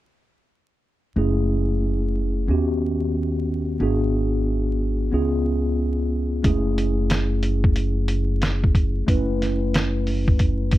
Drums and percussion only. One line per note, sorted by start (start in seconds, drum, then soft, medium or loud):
6.44 kick loud
6.44 closed hi-hat medium
6.78 closed hi-hat medium
7.10 snare loud
7.10 closed hi-hat medium
7.43 closed hi-hat medium
7.64 kick medium
7.76 closed hi-hat medium
8.08 closed hi-hat medium
8.42 snare medium
8.42 closed hi-hat medium
8.64 kick medium
8.75 kick medium
8.75 closed hi-hat medium
9.08 kick loud
9.08 closed hi-hat medium
9.42 snare soft
9.42 closed hi-hat medium
9.74 snare loud
9.74 closed hi-hat medium
10.07 open hi-hat soft
10.28 kick medium
10.39 kick medium
10.39 closed hi-hat medium
10.71 kick medium
10.71 closed hi-hat medium